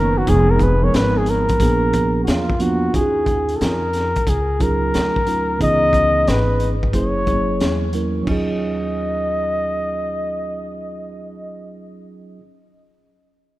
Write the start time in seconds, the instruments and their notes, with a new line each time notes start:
Already playing: upright bass F#1, tine electric piano D#3 A#3 B3 C#4 D#4, flugelhorn A#4
0.18 flugelhorn F#4
0.26 upright bass F1, tine electric piano F3 G#3 B3 D#4 G#4, flugelhorn G#4, kick, closed hi-hat
0.51 flugelhorn A#4
0.59 flugelhorn B4, kick, closed hi-hat
0.81 tine electric piano F3 G3 B3 D#4 A#4, flugelhorn C#5
0.88 tine electric piano G#3
0.94 upright bass G#1, flugelhorn B4, snare, closed hi-hat
1.17 flugelhorn G#4
1.26 flugelhorn A#4, closed hi-hat
1.49 muted upright bass stroke, kick, closed hi-hat
1.60 upright bass A#1, tine electric piano F3 A#3 B3 D4 G#4, kick, closed hi-hat
1.93 kick, closed hi-hat
2.24 upright bass E2, flugelhorn F#4, closed hi-hat
2.28 flugelhorn F4, snare
2.50 kick
2.59 tine electric piano F3 A#3 B3 D4 F4, flugelhorn F#4, closed hi-hat
2.93 upright bass D#2, tine electric piano C#4 D#4 F4 F#4, flugelhorn G#4, kick, closed hi-hat
3.01 tine electric piano G#4
3.26 kick, closed hi-hat
3.49 closed hi-hat
3.56 flugelhorn A4
3.61 upright bass F2, flugelhorn A#4, snare, closed hi-hat
3.93 snare, closed hi-hat
4.16 muted upright bass stroke, kick, closed hi-hat
4.27 upright bass C#2, flugelhorn G#4, kick, closed hi-hat
4.59 tine electric piano F#3 C#4 D#4 F4 G#4, flugelhorn A#4, kick, closed hi-hat
4.94 upright bass D2, snare, closed hi-hat
5.16 kick
5.26 tine electric piano F#3 C#4 D#4 F4 A#4, closed hi-hat
5.59 upright bass C#2, tine electric piano E3 B3 C#4 D#4 G#4, flugelhorn D#5, kick, closed hi-hat
5.93 kick, closed hi-hat
6.27 upright bass G#1, flugelhorn B4, snare, closed hi-hat
6.60 closed hi-hat
6.83 kick
6.93 upright bass F#1, tine electric piano F#3 A#3 C#4 E4 G#4, flugelhorn C#5, kick, closed hi-hat
7.26 tine electric piano F#3 G#3 C#4 E4 G#4, kick, closed hi-hat
7.33 tine electric piano A#3
7.60 upright bass E2, snare, closed hi-hat
7.93 tine electric piano F#3 A#3 C#4 E4 A#4, closed hi-hat
8.23 tine electric piano F#3 C#4
8.27 upright bass D#2, tine electric piano D#4 F4, flugelhorn D#5, kick, crash
8.31 tine electric piano G#4